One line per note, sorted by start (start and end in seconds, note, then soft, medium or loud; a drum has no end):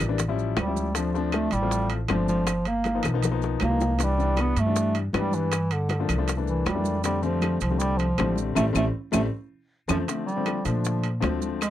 0.00 0.53 A1 medium
0.00 high conga soft
0.00 low conga medium
0.00 claves medium
0.00 maracas medium
0.08 0.18 E3 medium
0.08 0.19 G3 medium
0.08 0.19 A#3 medium
0.08 0.19 D4 medium
0.18 high bongo medium
0.18 high conga soft
0.18 low conga medium
0.18 high timbale medium
0.18 maracas medium
0.28 0.55 F3 medium
0.28 0.55 G3 medium
0.28 0.55 C#4 medium
0.28 0.55 E4 medium
0.38 high bongo soft
0.38 high conga soft
0.38 maracas soft
0.57 1.46 D2 medium
0.57 0.93 G3 medium
0.57 high bongo medium
0.57 low bongo medium
0.57 high conga medium
0.57 high timbale medium
0.57 low timbale medium
0.57 claves medium
0.57 maracas soft
0.67 0.87 F3 medium
0.67 0.87 G3 medium
0.67 0.87 C#4 medium
0.67 0.87 E4 medium
0.76 high bongo soft
0.76 high conga medium
0.76 maracas medium
0.95 1.08 F3 medium
0.95 1.35 F3 medium
0.95 1.09 A3 medium
0.95 1.09 C4 medium
0.95 1.09 D4 medium
0.95 high bongo medium
0.95 high timbale medium
0.95 maracas medium
1.14 1.47 F3 medium
1.14 1.48 A3 medium
1.14 1.48 C4 medium
1.14 1.48 D4 loud
1.14 high conga soft
1.14 maracas soft
1.32 1.54 A3 loud
1.32 high bongo medium
1.32 high conga loud
1.32 high timbale medium
1.32 claves medium
1.32 maracas soft
1.51 2.05 A1 loud
1.51 1.90 G3 loud
1.51 high conga soft
1.51 high timbale medium
1.51 maracas medium
1.62 1.95 F3 medium
1.62 1.95 A3 medium
1.62 1.95 C4 medium
1.62 1.95 F4 medium
1.71 high bongo medium
1.71 high conga soft
1.71 maracas medium
1.90 high conga soft
1.90 high timbale medium
1.90 maracas soft
2.08 2.98 G1 medium
2.08 2.47 F3 medium
2.08 2.28 F3 medium
2.08 2.47 A3 medium
2.08 2.47 C4 medium
2.08 2.47 D4 medium
2.08 high bongo medium
2.08 low bongo medium
2.08 high conga medium
2.08 high timbale medium
2.08 claves medium
2.08 maracas soft
2.28 2.69 F3 medium
2.28 high conga medium
2.28 maracas medium
2.47 high bongo medium
2.47 high conga soft
2.47 high timbale medium
2.47 claves medium
2.47 maracas medium
2.65 3.05 A#3 loud
2.65 high bongo soft
2.65 high conga soft
2.65 high timbale medium
2.65 maracas soft
2.84 high bongo medium
2.84 high conga loud
2.84 high timbale medium
2.84 maracas soft
2.95 3.08 F3 medium
2.95 3.08 A#3 medium
2.95 3.08 B3 medium
2.95 3.08 D#4 medium
3.03 3.57 B1 medium
3.03 high bongo medium
3.03 high conga soft
3.03 low conga medium
3.03 high timbale loud
3.03 claves medium
3.03 maracas medium
3.14 3.27 F3 medium
3.14 3.27 A#3 medium
3.14 3.27 B3 medium
3.14 3.28 D#4 loud
3.23 high bongo medium
3.23 high conga soft
3.23 low conga medium
3.23 high timbale medium
3.23 maracas medium
3.31 3.59 F3 medium
3.31 3.59 A#3 medium
3.31 3.59 B3 medium
3.31 3.59 D#4 loud
3.42 high bongo medium
3.42 high conga soft
3.42 maracas soft
3.60 4.51 C2 medium
3.60 low bongo medium
3.60 high conga medium
3.60 high timbale medium
3.60 low timbale medium
3.60 claves medium
3.60 maracas soft
3.64 4.05 A#3 medium
3.70 3.90 F3 medium
3.70 3.91 A#3 medium
3.70 3.91 B3 medium
3.70 3.91 D#4 medium
3.81 low bongo medium
3.81 high conga medium
3.81 maracas medium
3.98 4.12 E3 medium
3.98 4.13 G3 medium
3.98 4.12 B3 medium
3.98 4.13 D4 medium
3.98 high bongo medium
3.98 high conga soft
3.98 high timbale medium
3.98 maracas medium
4.03 4.42 G3 loud
4.18 4.52 E3 medium
4.18 4.52 G3 medium
4.18 4.52 B3 medium
4.18 4.52 D4 medium
4.18 high conga soft
4.18 maracas soft
4.37 high bongo medium
4.37 high conga loud
4.37 high timbale medium
4.37 claves medium
4.37 maracas soft
4.41 4.61 B3 loud
4.56 5.10 G2 loud
4.56 4.96 A3 loud
4.56 high conga soft
4.56 high timbale medium
4.56 maracas medium
4.66 5.00 E3 medium
4.66 5.00 G3 medium
4.66 5.00 B3 medium
4.66 5.00 D4 medium
4.76 high bongo medium
4.76 high conga soft
4.76 maracas medium
4.94 high conga soft
4.94 high timbale medium
4.94 maracas soft
5.13 6.03 G2 medium
5.13 5.52 E3 medium
5.13 5.52 G3 medium
5.13 5.36 G3 medium
5.13 5.52 B3 medium
5.13 5.52 D4 medium
5.13 high bongo medium
5.13 low bongo medium
5.13 high conga medium
5.13 high timbale medium
5.13 low timbale medium
5.13 claves medium
5.13 maracas soft
5.31 5.74 E3 medium
5.31 high conga medium
5.31 maracas medium
5.51 high bongo medium
5.51 high conga soft
5.51 high timbale loud
5.51 claves medium
5.51 maracas medium
5.70 6.10 D3 medium
5.70 high bongo soft
5.70 high conga soft
5.70 high timbale medium
5.70 maracas soft
5.89 high bongo medium
5.89 high conga loud
5.89 high timbale medium
5.89 maracas soft
6.00 6.13 F3 medium
6.00 6.13 A3 medium
6.00 6.13 A#3 medium
6.00 6.13 D4 medium
6.09 6.62 C2 loud
6.09 high conga soft
6.09 low conga medium
6.09 high timbale medium
6.09 claves medium
6.09 maracas medium
6.18 6.28 F3 medium
6.18 6.28 A3 medium
6.18 6.28 A#3 medium
6.18 6.28 D4 loud
6.28 high bongo medium
6.28 high conga soft
6.28 high timbale medium
6.28 maracas medium
6.37 6.64 E3 medium
6.37 6.64 A3 medium
6.37 6.64 A#3 medium
6.37 6.64 D4 medium
6.47 6.70 E3 medium
6.47 high bongo soft
6.47 high conga soft
6.47 maracas soft
6.65 7.55 F2 medium
6.65 7.04 G3 medium
6.65 high bongo medium
6.65 low bongo medium
6.65 high conga medium
6.65 high timbale medium
6.65 low timbale medium
6.65 claves medium
6.65 maracas soft
6.75 6.95 E3 medium
6.75 6.95 A3 medium
6.75 6.95 A#3 medium
6.75 6.95 D4 medium
6.84 high bongo soft
6.84 high conga medium
6.84 maracas medium
7.03 7.17 D3 medium
7.03 7.17 G3 medium
7.03 7.24 G3 medium
7.03 7.17 A3 medium
7.03 7.17 C4 medium
7.03 high bongo medium
7.03 high conga soft
7.03 high timbale medium
7.03 maracas medium
7.22 7.56 D3 medium
7.22 7.61 F3 loud
7.22 7.56 G3 medium
7.22 7.56 A3 medium
7.22 7.56 C4 medium
7.22 high conga soft
7.22 maracas soft
7.42 high bongo medium
7.42 high conga loud
7.42 high timbale medium
7.42 claves medium
7.42 maracas soft
7.60 8.14 C2 loud
7.60 7.80 F3 medium
7.60 high conga soft
7.60 high timbale medium
7.60 maracas medium
7.70 8.04 D3 medium
7.70 8.04 G3 medium
7.70 8.04 A3 medium
7.70 8.04 C4 medium
7.79 7.99 G3 medium
7.79 high bongo medium
7.79 high conga soft
7.79 maracas medium
7.98 8.36 F3 loud
7.98 high conga soft
7.98 high timbale medium
7.98 maracas soft
8.18 8.54 A1 medium
8.18 8.56 D3 medium
8.18 8.54 G3 medium
8.18 8.54 A3 medium
8.18 8.54 C4 medium
8.18 high bongo medium
8.18 low bongo medium
8.18 high conga medium
8.18 high timbale medium
8.18 claves medium
8.18 maracas soft
8.36 high conga medium
8.36 maracas medium
8.55 8.70 A1 loud
8.55 8.68 G3 loud
8.55 8.68 A3 medium
8.55 8.65 A3 medium
8.55 8.68 C4 medium
8.55 low bongo medium
8.55 low conga loud
8.55 high timbale loud
8.55 claves loud
8.55 maracas medium
8.73 8.89 A1 loud
8.73 8.86 G3 loud
8.73 8.86 A3 loud
8.73 8.85 A3 loud
8.73 8.86 C4 loud
8.73 low bongo loud
8.73 low conga loud
8.73 high timbale loud
8.73 claves loud
8.73 maracas medium
9.12 9.27 A1 loud
9.12 9.25 G3 loud
9.12 9.25 A3 loud
9.12 9.22 A3 medium
9.12 9.25 C4 loud
9.12 low bongo medium
9.12 low conga loud
9.12 high timbale loud
9.12 claves loud
9.12 maracas loud
9.88 10.03 F2 medium
9.88 10.01 F3 medium
9.88 9.98 F3 medium
9.88 10.01 A3 loud
9.88 10.01 C4 medium
9.88 low bongo loud
9.88 low conga loud
9.88 high timbale loud
9.88 claves loud
9.88 maracas medium
10.07 10.28 D3 medium
10.07 10.28 F3 medium
10.07 10.28 A3 medium
10.07 10.25 A3 medium
10.07 10.28 C4 medium
10.07 high bongo medium
10.07 high conga soft
10.07 high timbale medium
10.07 maracas medium
10.26 10.67 G3 medium
10.26 high conga soft
10.26 maracas soft
10.36 10.57 D3 medium
10.36 10.57 F3 medium
10.36 10.57 A3 medium
10.36 10.57 C4 medium
10.46 high bongo medium
10.46 high conga medium
10.46 high timbale medium
10.46 claves medium
10.46 maracas soft
10.65 11.19 A#2 medium
10.65 11.05 D3 medium
10.65 11.05 F3 medium
10.65 11.23 F3 medium
10.65 11.06 A3 medium
10.65 11.06 D4 medium
10.65 high conga soft
10.65 high timbale medium
10.65 maracas medium
10.84 high bongo medium
10.84 high conga soft
10.84 maracas medium
11.04 high conga soft
11.04 high timbale medium
11.04 maracas soft
11.20 11.70 D2 medium
11.20 11.60 D3 medium
11.20 11.60 F3 medium
11.20 11.60 A3 medium
11.20 11.60 C4 loud
11.20 high bongo medium
11.20 low bongo medium
11.20 high conga medium
11.20 high timbale medium
11.20 low timbale medium
11.20 claves medium
11.20 maracas soft
11.41 high conga medium
11.41 maracas medium
11.61 11.70 G#3 medium
11.61 high bongo medium
11.61 high conga soft
11.61 high timbale loud
11.61 claves medium
11.61 maracas medium